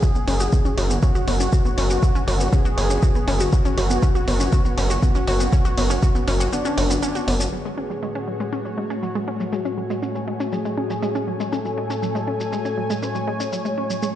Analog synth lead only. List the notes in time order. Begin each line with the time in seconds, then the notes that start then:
Already playing: G#4
1.03 F#4
2.53 G#4
3.53 F#4
5.02 F#4
6.53 D4
7.53 G#4
9.03 F#4
10.52 G#4
11.53 A4
13.03 C#5